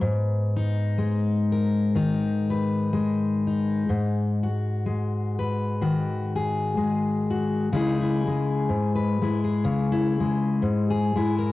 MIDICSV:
0, 0, Header, 1, 2, 480
1, 0, Start_track
1, 0, Key_signature, 5, "minor"
1, 0, Tempo, 961538
1, 16, Time_signature, 4, 2, 24, 8
1, 5751, End_track
2, 0, Start_track
2, 0, Title_t, "Steel-string acoustic guitar"
2, 0, Program_c, 0, 25
2, 0, Note_on_c, 0, 59, 46
2, 0, Note_on_c, 0, 71, 51
2, 5, Note_on_c, 0, 44, 61
2, 282, Note_on_c, 0, 63, 55
2, 489, Note_on_c, 0, 56, 49
2, 757, Note_off_c, 0, 71, 0
2, 759, Note_on_c, 0, 70, 48
2, 974, Note_on_c, 0, 51, 52
2, 976, Note_off_c, 0, 63, 0
2, 978, Note_on_c, 0, 63, 48
2, 1242, Note_off_c, 0, 70, 0
2, 1249, Note_on_c, 0, 71, 45
2, 1461, Note_off_c, 0, 56, 0
2, 1463, Note_on_c, 0, 56, 53
2, 1731, Note_off_c, 0, 63, 0
2, 1733, Note_on_c, 0, 63, 48
2, 1910, Note_off_c, 0, 51, 0
2, 1914, Note_off_c, 0, 71, 0
2, 1932, Note_off_c, 0, 44, 0
2, 1938, Note_off_c, 0, 59, 0
2, 1943, Note_on_c, 0, 44, 52
2, 2209, Note_off_c, 0, 63, 0
2, 2211, Note_on_c, 0, 66, 49
2, 2226, Note_off_c, 0, 56, 0
2, 2425, Note_on_c, 0, 56, 45
2, 2690, Note_on_c, 0, 71, 45
2, 2898, Note_off_c, 0, 66, 0
2, 2902, Note_on_c, 0, 51, 51
2, 2904, Note_on_c, 0, 66, 50
2, 3167, Note_off_c, 0, 71, 0
2, 3173, Note_on_c, 0, 68, 49
2, 3374, Note_off_c, 0, 56, 0
2, 3380, Note_on_c, 0, 56, 49
2, 3640, Note_off_c, 0, 66, 0
2, 3646, Note_on_c, 0, 66, 46
2, 3833, Note_off_c, 0, 56, 0
2, 3833, Note_off_c, 0, 66, 0
2, 3834, Note_off_c, 0, 51, 0
2, 3857, Note_on_c, 0, 49, 59
2, 3858, Note_on_c, 0, 56, 48
2, 3860, Note_off_c, 0, 44, 0
2, 3866, Note_off_c, 0, 68, 0
2, 3866, Note_on_c, 0, 63, 51
2, 3869, Note_on_c, 0, 64, 52
2, 3872, Note_on_c, 0, 68, 53
2, 3993, Note_off_c, 0, 64, 0
2, 3999, Note_on_c, 0, 64, 46
2, 4123, Note_off_c, 0, 56, 0
2, 4129, Note_on_c, 0, 56, 54
2, 4337, Note_off_c, 0, 49, 0
2, 4338, Note_on_c, 0, 44, 45
2, 4468, Note_off_c, 0, 68, 0
2, 4470, Note_on_c, 0, 71, 45
2, 4595, Note_off_c, 0, 56, 0
2, 4599, Note_off_c, 0, 64, 0
2, 4601, Note_on_c, 0, 56, 51
2, 4605, Note_on_c, 0, 64, 53
2, 4710, Note_off_c, 0, 71, 0
2, 4712, Note_on_c, 0, 68, 44
2, 4814, Note_on_c, 0, 49, 62
2, 4817, Note_off_c, 0, 44, 0
2, 4946, Note_off_c, 0, 64, 0
2, 4952, Note_on_c, 0, 64, 55
2, 5083, Note_off_c, 0, 56, 0
2, 5093, Note_on_c, 0, 56, 52
2, 5295, Note_off_c, 0, 49, 0
2, 5302, Note_on_c, 0, 44, 54
2, 5431, Note_off_c, 0, 68, 0
2, 5443, Note_on_c, 0, 68, 50
2, 5563, Note_off_c, 0, 56, 0
2, 5565, Note_off_c, 0, 64, 0
2, 5569, Note_on_c, 0, 56, 56
2, 5573, Note_on_c, 0, 64, 48
2, 5677, Note_off_c, 0, 68, 0
2, 5683, Note_on_c, 0, 70, 55
2, 5751, Note_off_c, 0, 44, 0
2, 5751, Note_off_c, 0, 56, 0
2, 5751, Note_off_c, 0, 63, 0
2, 5751, Note_off_c, 0, 64, 0
2, 5751, Note_off_c, 0, 70, 0
2, 5751, End_track
0, 0, End_of_file